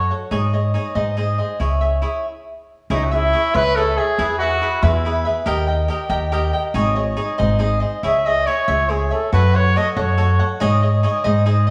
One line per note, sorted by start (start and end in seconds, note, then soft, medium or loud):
0.00 0.10 F#4 medium
0.00 0.10 A4 medium
0.00 0.10 C#5 medium
0.00 0.17 C#5 medium
0.10 0.32 A4 soft
0.10 0.31 C#5 soft
0.10 0.32 F#5 soft
0.31 0.73 G#2 loud
0.31 0.53 D#4 medium
0.31 0.53 G#4 loud
0.31 0.53 C#5 medium
0.31 0.52 D#5 medium
0.53 0.73 G#4 soft
0.53 0.74 C#5 medium
0.53 0.74 D#5 medium
0.74 0.95 D#4 medium
0.74 0.94 G#4 medium
0.74 0.95 C#5 medium
0.74 0.94 D#5 medium
0.95 1.38 G#2 loud
0.95 1.16 D#4 medium
0.95 1.16 G#4 medium
0.95 1.17 C5 medium
0.95 1.17 D#5 medium
1.17 1.39 D#4 medium
1.17 1.39 G#4 medium
1.17 1.38 C5 medium
1.17 1.37 D#5 medium
1.38 1.59 G#4 soft
1.38 1.60 C5 medium
1.38 1.60 D#5 medium
1.60 2.03 C#2 medium
1.60 1.82 E4 medium
1.60 1.81 G#4 medium
1.60 1.81 C#5 medium
1.60 1.80 E5 medium
1.81 2.01 G#4 soft
1.81 2.01 C#5 soft
1.81 2.02 E5 medium
2.02 2.25 E4 medium
2.02 2.25 G#4 medium
2.02 2.25 C#5 medium
2.02 2.26 E5 medium
2.90 3.32 C#2 loud
2.90 3.04 D#4 medium
2.90 3.13 E4 medium
2.90 3.12 G#4 medium
2.90 3.11 C#5 medium
2.90 3.10 E5 medium
3.05 3.15 F#4 medium
3.11 3.57 E4 loud
3.11 3.32 G#4 soft
3.11 3.32 C#5 medium
3.11 3.33 E5 medium
3.33 3.54 E4 medium
3.33 3.54 G#4 medium
3.33 3.53 C#5 medium
3.33 3.53 E5 medium
3.54 3.97 C#2 loud
3.54 3.75 E4 medium
3.54 3.76 G#4 medium
3.54 3.77 B4 loud
3.54 3.76 C#5 medium
3.54 3.77 E5 medium
3.76 3.98 E4 medium
3.76 3.98 G#4 medium
3.76 3.99 A4 loud
3.76 3.97 C#5 medium
3.76 3.96 E5 medium
3.97 4.38 G#4 loud
3.97 4.18 G#4 soft
3.97 4.19 C#5 medium
3.97 4.19 E5 medium
4.18 4.60 E2 loud
4.18 4.41 E4 medium
4.18 4.40 G#4 medium
4.18 4.40 B4 medium
4.18 4.39 E5 medium
4.38 4.84 F#4 loud
4.38 4.61 G#4 medium
4.38 4.61 B4 medium
4.38 4.62 E5 medium
4.61 4.83 E4 medium
4.61 4.83 G#4 medium
4.61 4.83 B4 medium
4.61 4.82 E5 medium
4.83 5.24 E2 loud
4.83 4.89 E4 medium
4.83 5.04 E4 medium
4.83 5.05 G#4 medium
4.83 5.05 B4 medium
4.83 5.05 E5 medium
4.88 4.95 F#4 medium
4.93 5.29 E4 medium
5.05 5.26 E4 medium
5.05 5.25 G#4 medium
5.05 5.25 B4 medium
5.05 5.24 E5 medium
5.25 5.46 G#4 medium
5.25 5.46 B4 soft
5.25 5.47 E5 medium
5.46 5.88 D#2 loud
5.46 5.68 G4 medium
5.46 5.67 A#4 loud
5.46 5.67 D#5 loud
5.46 5.66 G5 loud
5.67 5.88 A#4 soft
5.67 5.89 D#5 medium
5.67 5.89 G5 medium
5.88 6.10 G4 medium
5.88 6.09 A#4 medium
5.88 6.09 D#5 medium
5.88 6.09 G5 medium
6.09 6.51 D#2 loud
6.09 6.31 G4 medium
6.09 6.31 A#4 medium
6.09 6.32 D#5 medium
6.09 6.31 G5 medium
6.32 6.53 G4 medium
6.32 6.53 A#4 medium
6.32 6.53 D#5 medium
6.32 6.52 G5 loud
6.53 6.75 A#4 medium
6.53 6.74 D#5 medium
6.53 6.74 G5 medium
6.74 7.16 G#1 loud
6.74 6.96 D#4 loud
6.74 6.96 G#4 medium
6.74 6.95 C#5 loud
6.74 6.94 D#5 loud
6.95 7.15 G#4 soft
6.95 7.16 C#5 medium
6.95 7.17 D#5 medium
7.17 7.38 D#4 medium
7.17 7.38 G#4 medium
7.17 7.38 C#5 medium
7.17 7.37 D#5 medium
7.38 7.82 G#1 loud
7.38 7.58 D#4 medium
7.38 7.58 G#4 medium
7.38 7.59 C5 medium
7.38 7.59 D#5 medium
7.59 7.81 D#4 medium
7.59 7.81 G#4 medium
7.59 7.80 C5 medium
7.59 7.79 D#5 medium
7.80 8.03 G#4 medium
7.80 8.03 C5 medium
7.80 8.03 D#5 medium
8.03 8.45 C#2 medium
8.03 8.25 E4 medium
8.03 8.26 G#4 medium
8.03 8.25 C#5 medium
8.03 8.27 E5 medium
8.03 8.24 E5 medium
8.25 8.46 G#4 medium
8.25 8.46 C#5 medium
8.25 8.48 D#5 loud
8.25 8.47 E5 medium
8.46 8.67 E4 medium
8.46 8.67 G#4 medium
8.46 8.92 C#5 loud
8.46 8.67 C#5 medium
8.46 8.67 E5 medium
8.68 9.10 C#2 loud
8.68 8.87 E4 medium
8.68 8.88 G#4 medium
8.68 8.89 C#5 medium
8.68 8.89 E5 medium
8.89 9.11 E4 medium
8.89 9.11 G#4 medium
8.89 9.14 G#4 medium
8.89 9.10 C#5 medium
8.89 9.09 E5 medium
9.11 9.33 G#4 soft
9.11 9.32 A4 medium
9.11 9.32 C#5 medium
9.11 9.32 E5 soft
9.32 9.74 F#2 loud
9.32 9.54 F#4 medium
9.32 9.54 A4 medium
9.32 9.57 B4 medium
9.32 9.54 C#5 medium
9.32 9.53 F#5 medium
9.54 9.76 A4 soft
9.54 9.76 C#5 soft
9.54 9.78 C#5 loud
9.54 9.75 F#5 medium
9.76 9.96 F#4 medium
9.76 9.95 A4 medium
9.76 9.95 C#5 medium
9.76 9.90 D#5 loud
9.76 9.95 F#5 medium
9.90 10.01 D#5 medium
9.96 10.38 F#2 loud
9.96 10.16 F#4 medium
9.96 10.17 A4 medium
9.96 10.17 C#5 medium
9.96 10.46 C#5 loud
9.96 10.18 F#5 medium
10.17 10.39 F#4 medium
10.17 10.39 A4 medium
10.17 10.39 C#5 medium
10.17 10.38 F#5 medium
10.39 10.60 A4 medium
10.39 10.60 C#5 medium
10.39 10.61 F#5 medium
10.60 11.03 G#2 loud
10.60 10.82 D#4 loud
10.60 10.82 G#4 loud
10.60 10.82 C#5 medium
10.60 10.81 D#5 loud
10.82 11.02 G#4 medium
10.82 11.03 C#5 medium
10.82 11.03 D#5 medium
11.03 11.24 D#4 medium
11.03 11.24 G#4 medium
11.03 11.24 C#5 medium
11.03 11.23 D#5 medium
11.24 11.66 G#2 loud
11.24 11.44 D#4 medium
11.24 11.45 G#4 medium
11.24 11.46 C5 medium
11.24 11.46 D#5 medium
11.46 11.67 D#4 medium
11.46 11.67 G#4 medium
11.46 11.67 C5 medium
11.46 11.66 D#5 medium
11.67 11.70 D#5 medium